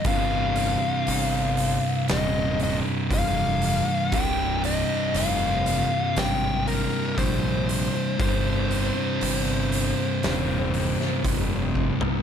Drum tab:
HH |o-o-o-o-o-o-o-o-|o-o-o-o-o-o-o-o-|o-o-o-o-o-o-o---|
SD |--------o-------|--------o-------|--------o--o----|
FT |----------------|----------------|---------------o|
BD |o-----------o---|o-----------o---|o-----------o-o-|